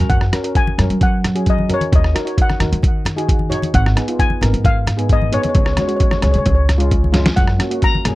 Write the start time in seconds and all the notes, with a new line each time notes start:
0.10 F#2 F#5, kick, closed hi-hat
0.21 cross-stick
0.33 C#4 F#4 A#4, cross-stick, closed hi-hat
0.44 C#4 F#4 A#4, closed hi-hat
0.55 G#5, kick, closed hi-hat
0.67 high conga
0.78 F#2 C#4 F#4 A#4, cross-stick, closed hi-hat, low conga
0.90 F#3, closed hi-hat
1.01 F#5, kick, closed hi-hat, high conga
1.24 cross-stick, closed hi-hat, low conga
1.35 C#4 F#4 G#4, closed hi-hat
1.46 D#5, kick, closed hi-hat
1.58 high conga
1.69 C#4 F#4 A#4, closed hi-hat, low conga
1.74 C#5
1.81 closed hi-hat, high conga
1.92 D#2 D#5, kick, closed hi-hat
2.04 cross-stick
2.14 D#4 F#4 A#4, cross-stick, closed hi-hat
2.25 D#4 F#4 C#5, closed hi-hat
2.38 kick, closed hi-hat
2.42 F#5
2.50 cross-stick, high conga
2.59 D#2 D#4 F#4 A#4, cross-stick, closed hi-hat, low conga
2.72 D#3, closed hi-hat
2.83 kick, closed hi-hat, high conga
3.05 cross-stick, closed hi-hat, low conga
3.16 D#4 F#4 G#4, closed hi-hat
3.29 kick, closed hi-hat
3.39 high conga
3.49 D#4 F#4 C#5, closed hi-hat, low conga
3.62 closed hi-hat, high conga
3.74 G#1 F#5, kick, closed hi-hat
3.86 cross-stick
3.96 B3 D#4 G#4, cross-stick, closed hi-hat
4.08 B3 D#4 F4, closed hi-hat
4.19 G#5, kick, closed hi-hat
4.30 high conga
4.41 G#1 B3 D#4 A#4, cross-stick, closed hi-hat, low conga
4.53 G#2, closed hi-hat
4.64 F5, kick, closed hi-hat, high conga
4.87 cross-stick, closed hi-hat, low conga
4.97 B3 D#4 G#4, closed hi-hat
5.09 D#5, kick, closed hi-hat
5.21 high conga
5.32 B3 D#4 G#4 C#5, closed hi-hat, low conga
5.42 C#5, closed hi-hat, high conga
5.49 C#5
5.55 C#2 C#5, kick, closed hi-hat
5.65 C#5, cross-stick
5.73 C#5
5.77 G#3 C#4 F#4, cross-stick, closed hi-hat, high conga
5.81 C#5
5.88 G#3 C#4 F#4 C#5, closed hi-hat
5.96 C#5, kick, closed hi-hat
6.03 C#5
6.11 C#5, cross-stick, high conga
6.18 G#3 C#4 G#4 C#5
6.22 C#2 C#5, cross-stick, closed hi-hat, low conga
6.32 C#3 C#5, closed hi-hat
6.38 C#5
6.46 C#2 C#5, kick, closed hi-hat
6.55 C#5
6.69 cross-stick, closed hi-hat, low conga
6.78 G#3 C#4 F4, closed hi-hat
6.91 kick, closed hi-hat
7.04 high conga
7.12 G#3 C#4 F4, snare, closed hi-hat, low conga
7.26 snare, closed hi-hat, high conga
7.36 F#2 F#5, kick, closed hi-hat
7.48 cross-stick
7.59 A#3 C#4 F#4, cross-stick, closed hi-hat
7.70 A#3 C#4 F#4, closed hi-hat
7.82 A#5, kick, closed hi-hat
7.95 high conga
8.05 F#2 A#3 C#4 G#4, cross-stick, closed hi-hat, low conga